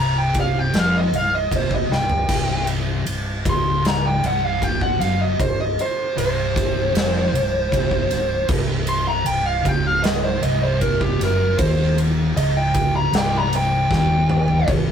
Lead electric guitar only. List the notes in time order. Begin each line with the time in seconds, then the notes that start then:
0.00 A#5
0.18 G5
0.40 F5
0.59 G5
0.79 F5
0.98 D#5
1.16 F5
1.35 D#5
1.56 C5
1.75 D#5
1.92 G5
3.50 C6
3.88 A#5
4.06 G5
4.27 F#5
4.45 F5
4.64 G5
4.82 F#5
5.00 F5
5.21 D#5
5.40 C5
5.60 D#5
5.81 C5
6.18 C5
8.89 C6
9.08 A#5
9.26 G5
9.46 F5
9.68 G5
9.87 F5
10.03 D#5
10.24 C5
10.44 D#5
10.63 C5
10.81 A#4
11.01 G4
11.23 A#4
11.59 C5
12.37 D#5
12.57 G5
12.96 A#5
13.19 G5
13.37 A#5
13.56 G5
13.96 G5